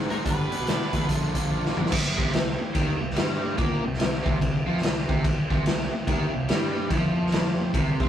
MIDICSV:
0, 0, Header, 1, 8, 480
1, 0, Start_track
1, 0, Tempo, 416089
1, 292, Time_signature, 4, 2, 24, 8
1, 9330, End_track
2, 0, Start_track
2, 0, Title_t, "Lead electric guitar"
2, 0, Program_c, 0, 29
2, 119, Note_on_c, 0, 70, 73
2, 177, Note_off_c, 0, 70, 0
2, 304, Note_on_c, 0, 71, 70
2, 1213, Note_off_c, 0, 71, 0
2, 9330, End_track
3, 0, Start_track
3, 0, Title_t, "Tonewheel organ"
3, 0, Program_c, 1, 16
3, 2198, Note_on_c, 1, 60, 70
3, 2202, Note_on_c, 1, 64, 67
3, 2203, Note_on_c, 1, 72, 69
3, 2210, Note_on_c, 1, 67, 63
3, 6000, Note_off_c, 1, 60, 0
3, 6001, Note_off_c, 1, 64, 0
3, 6002, Note_off_c, 1, 72, 0
3, 6006, Note_off_c, 1, 67, 0
3, 6056, Note_on_c, 1, 72, 69
3, 6059, Note_on_c, 1, 60, 68
3, 6059, Note_on_c, 1, 64, 70
3, 6059, Note_on_c, 1, 67, 67
3, 9330, Note_off_c, 1, 60, 0
3, 9330, Note_off_c, 1, 64, 0
3, 9330, Note_off_c, 1, 67, 0
3, 9330, Note_off_c, 1, 72, 0
3, 9330, End_track
4, 0, Start_track
4, 0, Title_t, "Overdriven electric guitar"
4, 0, Program_c, 2, 29
4, 100, Note_on_c, 2, 44, 73
4, 104, Note_on_c, 2, 51, 75
4, 112, Note_on_c, 2, 56, 82
4, 120, Note_on_c, 2, 60, 93
4, 125, Note_on_c, 2, 63, 81
4, 272, Note_off_c, 2, 44, 0
4, 276, Note_off_c, 2, 51, 0
4, 277, Note_on_c, 2, 43, 95
4, 280, Note_off_c, 2, 56, 0
4, 280, Note_on_c, 2, 50, 95
4, 282, Note_off_c, 2, 60, 0
4, 285, Note_on_c, 2, 55, 109
4, 287, Note_off_c, 2, 63, 0
4, 287, Note_on_c, 2, 59, 97
4, 294, Note_on_c, 2, 62, 107
4, 568, Note_off_c, 2, 43, 0
4, 579, Note_off_c, 2, 50, 0
4, 582, Note_off_c, 2, 55, 0
4, 582, Note_on_c, 2, 43, 74
4, 586, Note_off_c, 2, 59, 0
4, 593, Note_on_c, 2, 50, 69
4, 594, Note_off_c, 2, 62, 0
4, 596, Note_on_c, 2, 55, 77
4, 600, Note_on_c, 2, 59, 73
4, 608, Note_on_c, 2, 62, 71
4, 760, Note_off_c, 2, 43, 0
4, 765, Note_off_c, 2, 50, 0
4, 768, Note_off_c, 2, 55, 0
4, 772, Note_off_c, 2, 59, 0
4, 774, Note_on_c, 2, 43, 82
4, 779, Note_on_c, 2, 50, 80
4, 782, Note_on_c, 2, 55, 89
4, 783, Note_off_c, 2, 62, 0
4, 786, Note_on_c, 2, 59, 84
4, 797, Note_on_c, 2, 62, 87
4, 1060, Note_off_c, 2, 43, 0
4, 1065, Note_off_c, 2, 50, 0
4, 1071, Note_off_c, 2, 55, 0
4, 1074, Note_on_c, 2, 43, 76
4, 1075, Note_off_c, 2, 59, 0
4, 1079, Note_on_c, 2, 50, 76
4, 1080, Note_off_c, 2, 62, 0
4, 1085, Note_on_c, 2, 55, 80
4, 1089, Note_on_c, 2, 59, 79
4, 1093, Note_on_c, 2, 62, 83
4, 1242, Note_off_c, 2, 43, 0
4, 1242, Note_off_c, 2, 50, 0
4, 1248, Note_off_c, 2, 55, 0
4, 1250, Note_off_c, 2, 59, 0
4, 1251, Note_on_c, 2, 46, 81
4, 1252, Note_off_c, 2, 62, 0
4, 1256, Note_on_c, 2, 50, 98
4, 1265, Note_on_c, 2, 53, 90
4, 1268, Note_on_c, 2, 58, 89
4, 1268, Note_on_c, 2, 62, 92
4, 1535, Note_off_c, 2, 46, 0
4, 1545, Note_off_c, 2, 50, 0
4, 1548, Note_on_c, 2, 46, 73
4, 1551, Note_off_c, 2, 53, 0
4, 1553, Note_off_c, 2, 58, 0
4, 1558, Note_off_c, 2, 62, 0
4, 1559, Note_on_c, 2, 50, 84
4, 1565, Note_on_c, 2, 53, 84
4, 1567, Note_on_c, 2, 58, 96
4, 1572, Note_on_c, 2, 62, 84
4, 1716, Note_off_c, 2, 46, 0
4, 1725, Note_off_c, 2, 50, 0
4, 1727, Note_off_c, 2, 53, 0
4, 1730, Note_on_c, 2, 46, 82
4, 1734, Note_off_c, 2, 58, 0
4, 1735, Note_off_c, 2, 62, 0
4, 1739, Note_on_c, 2, 50, 79
4, 1741, Note_on_c, 2, 53, 80
4, 1748, Note_on_c, 2, 58, 84
4, 1749, Note_on_c, 2, 62, 79
4, 2017, Note_off_c, 2, 46, 0
4, 2021, Note_off_c, 2, 50, 0
4, 2029, Note_off_c, 2, 53, 0
4, 2030, Note_off_c, 2, 58, 0
4, 2031, Note_on_c, 2, 46, 74
4, 2033, Note_off_c, 2, 62, 0
4, 2035, Note_on_c, 2, 50, 70
4, 2043, Note_on_c, 2, 53, 83
4, 2044, Note_on_c, 2, 58, 78
4, 2047, Note_on_c, 2, 62, 81
4, 2200, Note_off_c, 2, 46, 0
4, 2202, Note_off_c, 2, 50, 0
4, 2206, Note_off_c, 2, 53, 0
4, 2206, Note_off_c, 2, 58, 0
4, 2208, Note_off_c, 2, 62, 0
4, 2513, Note_on_c, 2, 48, 93
4, 2686, Note_off_c, 2, 48, 0
4, 2699, Note_on_c, 2, 48, 70
4, 2935, Note_off_c, 2, 48, 0
4, 3170, Note_on_c, 2, 51, 108
4, 3461, Note_off_c, 2, 51, 0
4, 3475, Note_on_c, 2, 48, 83
4, 3616, Note_off_c, 2, 48, 0
4, 3643, Note_on_c, 2, 55, 102
4, 4120, Note_off_c, 2, 55, 0
4, 4129, Note_on_c, 2, 58, 114
4, 4420, Note_off_c, 2, 58, 0
4, 4444, Note_on_c, 2, 48, 77
4, 4579, Note_off_c, 2, 48, 0
4, 4613, Note_on_c, 2, 48, 77
4, 4851, Note_off_c, 2, 48, 0
4, 4905, Note_on_c, 2, 48, 102
4, 5071, Note_off_c, 2, 48, 0
4, 5085, Note_on_c, 2, 48, 75
4, 5326, Note_off_c, 2, 48, 0
4, 5388, Note_on_c, 2, 53, 122
4, 5560, Note_off_c, 2, 53, 0
4, 5565, Note_on_c, 2, 48, 69
4, 5806, Note_off_c, 2, 48, 0
4, 5870, Note_on_c, 2, 48, 106
4, 6042, Note_off_c, 2, 48, 0
4, 6353, Note_on_c, 2, 48, 93
4, 6515, Note_off_c, 2, 48, 0
4, 6529, Note_on_c, 2, 48, 68
4, 6768, Note_off_c, 2, 48, 0
4, 7021, Note_on_c, 2, 51, 107
4, 7306, Note_off_c, 2, 51, 0
4, 7316, Note_on_c, 2, 48, 76
4, 7455, Note_off_c, 2, 48, 0
4, 7488, Note_on_c, 2, 55, 94
4, 7963, Note_off_c, 2, 55, 0
4, 7965, Note_on_c, 2, 53, 116
4, 8924, Note_off_c, 2, 53, 0
4, 8931, Note_on_c, 2, 48, 98
4, 9224, Note_off_c, 2, 48, 0
4, 9234, Note_on_c, 2, 60, 102
4, 9330, Note_off_c, 2, 60, 0
4, 9330, End_track
5, 0, Start_track
5, 0, Title_t, "Fingered electric bass"
5, 0, Program_c, 3, 33
5, 124, Note_on_c, 3, 44, 82
5, 202, Note_off_c, 3, 44, 0
5, 295, Note_on_c, 3, 43, 80
5, 573, Note_off_c, 3, 43, 0
5, 688, Note_on_c, 3, 47, 78
5, 908, Note_off_c, 3, 47, 0
5, 1075, Note_on_c, 3, 40, 77
5, 1240, Note_off_c, 3, 40, 0
5, 1256, Note_on_c, 3, 34, 90
5, 1533, Note_off_c, 3, 34, 0
5, 1637, Note_on_c, 3, 34, 78
5, 2001, Note_off_c, 3, 34, 0
5, 2025, Note_on_c, 3, 34, 81
5, 2112, Note_off_c, 3, 34, 0
5, 2519, Note_on_c, 3, 36, 94
5, 2682, Note_off_c, 3, 36, 0
5, 2694, Note_on_c, 3, 36, 69
5, 2972, Note_off_c, 3, 36, 0
5, 3176, Note_on_c, 3, 39, 99
5, 3453, Note_off_c, 3, 39, 0
5, 3472, Note_on_c, 3, 36, 82
5, 3637, Note_off_c, 3, 36, 0
5, 3651, Note_on_c, 3, 43, 101
5, 4095, Note_off_c, 3, 43, 0
5, 4136, Note_on_c, 3, 46, 99
5, 4411, Note_off_c, 3, 46, 0
5, 4429, Note_on_c, 3, 36, 78
5, 4595, Note_off_c, 3, 36, 0
5, 4605, Note_on_c, 3, 36, 77
5, 4885, Note_off_c, 3, 36, 0
5, 4913, Note_on_c, 3, 36, 107
5, 5076, Note_off_c, 3, 36, 0
5, 5094, Note_on_c, 3, 36, 89
5, 5370, Note_off_c, 3, 36, 0
5, 5380, Note_on_c, 3, 41, 103
5, 5549, Note_off_c, 3, 41, 0
5, 5563, Note_on_c, 3, 36, 89
5, 5844, Note_off_c, 3, 36, 0
5, 5875, Note_on_c, 3, 36, 99
5, 6037, Note_off_c, 3, 36, 0
5, 6351, Note_on_c, 3, 36, 93
5, 6515, Note_off_c, 3, 36, 0
5, 6527, Note_on_c, 3, 36, 69
5, 6806, Note_off_c, 3, 36, 0
5, 7006, Note_on_c, 3, 39, 97
5, 7286, Note_off_c, 3, 39, 0
5, 7310, Note_on_c, 3, 36, 82
5, 7475, Note_off_c, 3, 36, 0
5, 7484, Note_on_c, 3, 43, 106
5, 7932, Note_off_c, 3, 43, 0
5, 7965, Note_on_c, 3, 41, 85
5, 8883, Note_off_c, 3, 41, 0
5, 8927, Note_on_c, 3, 36, 95
5, 9210, Note_off_c, 3, 36, 0
5, 9231, Note_on_c, 3, 48, 97
5, 9330, Note_off_c, 3, 48, 0
5, 9330, End_track
6, 0, Start_track
6, 0, Title_t, "Muted fingered electric bass strokes"
6, 2990, Note_on_c, 9, 29, 40
6, 3106, Note_off_c, 9, 29, 0
6, 6827, Note_on_c, 9, 29, 44
6, 6943, Note_off_c, 9, 29, 0
6, 9330, End_track
7, 0, Start_track
7, 0, Title_t, "Muted overdriven electric guitar strokes"
7, 2996, Note_on_c, 9, 29, 60
7, 3111, Note_off_c, 9, 29, 0
7, 6836, Note_on_c, 9, 29, 58
7, 6951, Note_off_c, 9, 29, 0
7, 9330, End_track
8, 0, Start_track
8, 0, Title_t, "Drums"
8, 119, Note_on_c, 9, 42, 49
8, 235, Note_off_c, 9, 42, 0
8, 296, Note_on_c, 9, 36, 102
8, 297, Note_on_c, 9, 42, 75
8, 411, Note_off_c, 9, 36, 0
8, 412, Note_off_c, 9, 42, 0
8, 599, Note_on_c, 9, 42, 57
8, 714, Note_off_c, 9, 42, 0
8, 772, Note_on_c, 9, 42, 72
8, 789, Note_on_c, 9, 38, 107
8, 887, Note_off_c, 9, 42, 0
8, 904, Note_off_c, 9, 38, 0
8, 1073, Note_on_c, 9, 42, 62
8, 1075, Note_on_c, 9, 36, 79
8, 1188, Note_off_c, 9, 42, 0
8, 1190, Note_off_c, 9, 36, 0
8, 1255, Note_on_c, 9, 36, 82
8, 1256, Note_on_c, 9, 42, 68
8, 1370, Note_off_c, 9, 36, 0
8, 1372, Note_off_c, 9, 42, 0
8, 1555, Note_on_c, 9, 36, 71
8, 1557, Note_on_c, 9, 42, 60
8, 1670, Note_off_c, 9, 36, 0
8, 1672, Note_off_c, 9, 42, 0
8, 1733, Note_on_c, 9, 36, 50
8, 1849, Note_off_c, 9, 36, 0
8, 1907, Note_on_c, 9, 38, 60
8, 2023, Note_off_c, 9, 38, 0
8, 2039, Note_on_c, 9, 45, 74
8, 2145, Note_on_c, 9, 38, 72
8, 2154, Note_off_c, 9, 45, 0
8, 2214, Note_on_c, 9, 36, 99
8, 2214, Note_on_c, 9, 49, 123
8, 2214, Note_on_c, 9, 57, 61
8, 2260, Note_off_c, 9, 38, 0
8, 2329, Note_off_c, 9, 49, 0
8, 2329, Note_off_c, 9, 57, 0
8, 2330, Note_off_c, 9, 36, 0
8, 2516, Note_on_c, 9, 36, 99
8, 2624, Note_on_c, 9, 38, 34
8, 2632, Note_off_c, 9, 36, 0
8, 2693, Note_on_c, 9, 57, 57
8, 2710, Note_off_c, 9, 38, 0
8, 2710, Note_on_c, 9, 38, 110
8, 2808, Note_off_c, 9, 57, 0
8, 2826, Note_off_c, 9, 38, 0
8, 3170, Note_on_c, 9, 57, 58
8, 3171, Note_on_c, 9, 36, 108
8, 3286, Note_off_c, 9, 36, 0
8, 3286, Note_off_c, 9, 57, 0
8, 3580, Note_on_c, 9, 38, 33
8, 3649, Note_on_c, 9, 57, 57
8, 3666, Note_off_c, 9, 38, 0
8, 3666, Note_on_c, 9, 38, 102
8, 3764, Note_off_c, 9, 57, 0
8, 3781, Note_off_c, 9, 38, 0
8, 4131, Note_on_c, 9, 36, 109
8, 4133, Note_on_c, 9, 57, 53
8, 4247, Note_off_c, 9, 36, 0
8, 4249, Note_off_c, 9, 57, 0
8, 4542, Note_on_c, 9, 38, 33
8, 4611, Note_on_c, 9, 57, 60
8, 4629, Note_off_c, 9, 38, 0
8, 4629, Note_on_c, 9, 38, 104
8, 4727, Note_off_c, 9, 57, 0
8, 4744, Note_off_c, 9, 38, 0
8, 4913, Note_on_c, 9, 36, 116
8, 5029, Note_off_c, 9, 36, 0
8, 5093, Note_on_c, 9, 36, 86
8, 5098, Note_on_c, 9, 57, 58
8, 5208, Note_off_c, 9, 36, 0
8, 5213, Note_off_c, 9, 57, 0
8, 5508, Note_on_c, 9, 38, 31
8, 5574, Note_on_c, 9, 57, 67
8, 5592, Note_off_c, 9, 38, 0
8, 5592, Note_on_c, 9, 38, 98
8, 5690, Note_off_c, 9, 57, 0
8, 5707, Note_off_c, 9, 38, 0
8, 5872, Note_on_c, 9, 36, 105
8, 5988, Note_off_c, 9, 36, 0
8, 6050, Note_on_c, 9, 36, 112
8, 6051, Note_on_c, 9, 57, 64
8, 6165, Note_off_c, 9, 36, 0
8, 6167, Note_off_c, 9, 57, 0
8, 6350, Note_on_c, 9, 36, 107
8, 6465, Note_off_c, 9, 36, 0
8, 6527, Note_on_c, 9, 57, 61
8, 6544, Note_on_c, 9, 38, 105
8, 6642, Note_off_c, 9, 57, 0
8, 6659, Note_off_c, 9, 38, 0
8, 7007, Note_on_c, 9, 36, 105
8, 7010, Note_on_c, 9, 57, 58
8, 7122, Note_off_c, 9, 36, 0
8, 7126, Note_off_c, 9, 57, 0
8, 7483, Note_on_c, 9, 57, 52
8, 7500, Note_on_c, 9, 38, 111
8, 7598, Note_off_c, 9, 57, 0
8, 7615, Note_off_c, 9, 38, 0
8, 7965, Note_on_c, 9, 36, 107
8, 7967, Note_on_c, 9, 57, 62
8, 8080, Note_off_c, 9, 36, 0
8, 8082, Note_off_c, 9, 57, 0
8, 8381, Note_on_c, 9, 38, 29
8, 8446, Note_on_c, 9, 57, 60
8, 8464, Note_off_c, 9, 38, 0
8, 8464, Note_on_c, 9, 38, 112
8, 8562, Note_off_c, 9, 57, 0
8, 8579, Note_off_c, 9, 38, 0
8, 8929, Note_on_c, 9, 36, 112
8, 8933, Note_on_c, 9, 57, 59
8, 9044, Note_off_c, 9, 36, 0
8, 9049, Note_off_c, 9, 57, 0
8, 9230, Note_on_c, 9, 36, 109
8, 9330, Note_off_c, 9, 36, 0
8, 9330, End_track
0, 0, End_of_file